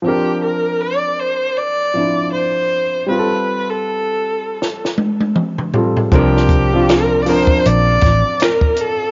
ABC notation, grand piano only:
X:1
M:4/4
L:1/16
Q:"Swing 16ths" 1/4=79
K:Gm
V:1 name="Grand piano"
[F,CDB]8- [F,CDB]2 [F,CD=EF]6 | [G,CFGA]12- [G,CFGA]2 [G,CFA]2 | [F,CDB]3 [F,CDF]3 [F,CDB]6- [F,CDB] z3 |]